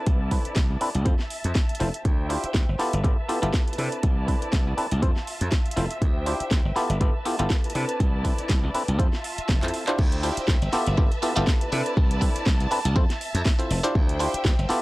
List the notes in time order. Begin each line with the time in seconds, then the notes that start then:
Already playing: C4 D4 E4 A4 B4 D5 A5
0.06 C2, kick, closed hi-hat
0.31 C4 D4 E4 A4 B4, kick, open hi-hat
0.45 muted slap bass stroke, closed hi-hat
0.56 C2, kick, snare, closed hi-hat
0.70 C2
0.81 C4 D4 E4 A4 B4, open hi-hat
0.95 C2, closed hi-hat
1.05 F2 C4 E4 F4 A4 C5 E5 A5, kick, closed hi-hat
1.19 snare
1.30 open hi-hat
1.44 F2, closed hi-hat
1.55 kick, snare, closed hi-hat
1.69 closed hi-hat
1.75 closed hi-hat
1.80 F1 C4 E4 F4 A4 C5, open hi-hat
1.94 closed hi-hat
2.05 D2 C5 E5 G5, kick, closed hi-hat
2.29 D4 E4 F4 G4 C5, open hi-hat
2.44 muted slap bass stroke, closed hi-hat
2.54 D2, kick, snare, closed hi-hat
2.69 G1
2.79 B3 E4 F4 G4 A4 B4 E5 A5, snare, open hi-hat
2.93 G1, closed hi-hat
3.04 G1 B3 E4 F4 G4 A4, kick, closed hi-hat
3.29 B3 E4 F4 G4 A4, open hi-hat
3.42 G1 B3 E4 F4 G4 A4, closed hi-hat
3.54 kick, snare, closed hi-hat
3.68 closed hi-hat
3.73 closed hi-hat
3.78 C3 C4 D4 E4 A4 B4 D5, open hi-hat
3.92 closed hi-hat
4.03 C2, kick, closed hi-hat
4.28 C4 D4 E4 A4 B4, kick, open hi-hat
4.42 muted slap bass stroke, closed hi-hat
4.53 C2, kick, snare, closed hi-hat
4.67 C2
4.77 C4 D4 E4 A4 B4, open hi-hat
4.91 C2, closed hi-hat
5.02 F2 C4 E4 F4 A4 C5 E5, kick, closed hi-hat
5.16 snare
5.27 open hi-hat
5.41 F2, closed hi-hat
5.52 kick, snare, closed hi-hat
5.66 closed hi-hat
5.71 closed hi-hat
5.76 F1 C4 E4 F4 A4 C5, open hi-hat
5.91 closed hi-hat
6.02 D2 C5 G5, kick, closed hi-hat
6.26 D4 E4 F4 G4 C5, open hi-hat
6.40 muted slap bass stroke, closed hi-hat
6.51 D2, kick, snare, closed hi-hat
6.65 G1
6.76 B3 E4 F4 G4 A4 B4 A5, muted slap bass stroke, snare, open hi-hat
6.90 G1, closed hi-hat
7.01 G1 B3 E4 F4 G4 A4, kick, closed hi-hat
7.25 B3 E4 F4 G4 A4, open hi-hat
7.39 G1 B3 E4 F4 G4 A4, closed hi-hat
7.50 kick, snare, closed hi-hat
7.64 closed hi-hat
7.70 closed hi-hat
7.75 C3 C4 D4 E4 A4 B4 D5, open hi-hat
7.89 closed hi-hat
8.00 C2, kick, closed hi-hat
8.24 C4 D4 E4 A4 B4, kick, open hi-hat
8.38 muted slap bass stroke, closed hi-hat
8.49 C2, kick, snare, closed hi-hat
8.63 C2
8.74 C4 D4 E4 A4 B4, muted slap bass stroke, open hi-hat
8.88 C2, closed hi-hat
8.99 F2 C4 E4 F4 A4 C5 E5 A5, kick, closed hi-hat
9.13 snare
9.24 open hi-hat
9.38 muted slap bass stroke, closed hi-hat
9.49 F1, kick, snare, closed hi-hat
9.62 F2 C4 E4 F4 A4 C5, clap, closed hi-hat
9.68 closed hi-hat
9.74 open hi-hat
9.87 D4 E4 F4 G4 C5, clap, closed hi-hat
9.99 D2 C5 E5 G5, kick, crash
10.12 closed hi-hat
10.23 D4 E4 F4 G4 C5, open hi-hat
10.37 muted slap bass stroke, closed hi-hat
10.48 D2, kick, snare
10.62 G1, closed hi-hat
10.73 B3 E4 F4 G4 A4 B4 A5, muted slap bass stroke, snare, open hi-hat
10.87 G1, closed hi-hat
10.97 B3 E4 F4 G4 A4, kick
11.12 closed hi-hat
11.22 B3 E4 F4 G4 A4, open hi-hat
11.36 G1 B3 E4 F4 G4 A4, closed hi-hat
11.47 kick, snare
11.61 closed hi-hat
11.72 C3 C4 D4 E4 A4 B4 D5, open hi-hat
11.86 closed hi-hat
11.97 C2, kick
12.11 closed hi-hat
12.21 C4 D4 E4 A4 B4, kick, open hi-hat
12.36 muted slap bass stroke, closed hi-hat
12.46 C2, kick, snare
12.60 C2, closed hi-hat
12.71 C4 D4 E4 A4 B4, muted slap bass stroke, open hi-hat
12.85 C2, closed hi-hat
12.96 F2 C4 E4 F4 A4 C5 E5, kick
13.10 snare, closed hi-hat
13.21 open hi-hat
13.34 F2, closed hi-hat
13.45 kick, snare, open hi-hat
13.59 C4 E4 F4 A4 C5, closed hi-hat
13.70 F1, open hi-hat
13.83 D4 E4 F4 G4 C5, closed hi-hat
13.95 D2 C5 E5 G5, kick
14.09 closed hi-hat
14.19 D4 E4 F4 G4 C5, open hi-hat
14.34 muted slap bass stroke, closed hi-hat
14.45 D2, kick, snare
14.59 G1, closed hi-hat
14.69 B3 E4 F4 G4 A4 B4 E5 A5, snare, open hi-hat